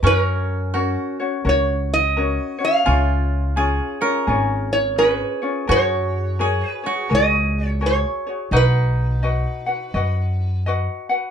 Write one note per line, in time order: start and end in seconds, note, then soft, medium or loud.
0.03 0.95 F#2 medium
0.03 2.55 C#4 medium
0.03 0.74 C#4 medium
0.03 0.74 F#4 medium
0.03 0.73 A#4 medium
0.03 0.18 B4 medium
0.03 0.76 C#5 medium
0.18 1.51 A#4 medium
0.74 1.18 C#4 medium
0.74 2.93 F#4 medium
0.74 1.19 F#4 medium
0.74 1.18 A#4 medium
0.74 1.18 C#5 medium
1.20 1.44 C#4 soft
1.20 1.44 F#4 medium
1.20 1.46 C#5 medium
1.45 2.37 C#2 medium
1.45 2.17 C#4 medium
1.45 2.16 F#4 medium
1.45 2.16 A#4 medium
1.45 2.18 C#5 medium
1.49 1.92 C#5 medium
1.94 2.64 D#5 medium
2.17 2.59 C#4 medium
2.17 2.59 F#4 medium
2.17 2.60 A#4 medium
2.17 2.57 C#5 medium
2.58 2.84 C#4 soft
2.58 2.85 F#4 medium
2.58 2.85 C#5 medium
2.65 4.00 F5 medium
2.85 3.79 C#2 medium
2.85 3.57 C#4 medium
2.85 3.56 F4 medium
2.85 5.04 F4 medium
2.85 3.56 G#4 medium
2.85 3.58 C#5 medium
3.56 4.01 C#4 medium
3.56 4.01 F4 medium
3.56 4.01 G#4 medium
3.56 4.98 G#4 medium
3.56 3.99 C#5 medium
4.01 4.27 C#4 soft
4.01 4.27 F4 medium
4.01 5.85 A#4 medium
4.01 4.28 C#5 medium
4.27 5.19 G#1 medium
4.27 4.99 C#4 medium
4.27 4.98 F4 medium
4.27 4.98 G#4 medium
4.27 5.00 C#5 medium
4.73 5.00 C#5 medium
4.98 5.42 C#4 medium
4.98 5.41 F4 medium
4.98 5.43 G#4 medium
4.98 6.40 G#4 medium
4.98 5.71 B4 medium
4.98 5.41 C#5 medium
5.42 5.68 C#4 soft
5.42 5.68 F4 soft
5.42 5.68 C#5 medium
5.67 6.61 F#2 medium
5.67 6.39 F#4 medium
5.67 6.86 F#4 loud
5.67 6.39 G#4 medium
5.67 6.38 A#4 medium
5.67 6.40 C#5 medium
5.67 6.68 C#5 medium
6.39 6.84 F#4 medium
6.39 6.83 G#4 medium
6.39 8.38 G#4 medium
6.39 6.83 A#4 medium
6.39 6.82 C#5 medium
6.68 7.14 B4 medium
6.84 7.09 F#4 medium
6.84 8.97 F#4 medium
6.84 7.10 G#4 soft
6.84 7.09 C#5 medium
7.09 8.03 C#2 medium
7.09 7.81 F#4 medium
7.09 7.81 G#4 medium
7.09 7.80 A#4 medium
7.09 7.81 C#5 medium
7.15 7.68 D#5 loud
7.68 7.86 C#5 loud
7.81 8.25 F#4 medium
7.81 8.26 G#4 medium
7.81 8.25 A#4 medium
7.81 8.25 C#5 medium
7.86 8.51 C#5 medium
8.27 8.52 F#4 soft
8.27 8.53 G#4 soft
8.27 8.52 C#5 medium
8.51 9.44 B1 medium
8.51 11.05 D#4 medium
8.51 9.23 F#4 medium
8.51 9.24 B4 medium
8.51 9.22 D#5 medium
8.51 9.24 F#5 medium
8.56 10.63 B4 medium
9.23 9.67 F#4 medium
9.23 9.66 B4 medium
9.23 9.67 D#5 medium
9.23 9.65 F#5 medium
9.66 9.93 F#4 soft
9.66 9.94 B4 soft
9.66 9.94 F#5 soft
9.94 10.86 F#2 medium
9.94 10.67 F#4 medium
9.94 10.67 B4 medium
9.94 10.66 D#5 medium
9.94 10.68 F#5 medium
10.66 11.10 F#4 medium
10.66 11.09 B4 medium
10.66 11.10 D#5 medium
10.66 11.08 F#5 medium
11.09 11.31 F#4 soft
11.09 11.31 B4 medium
11.09 11.31 F#5 medium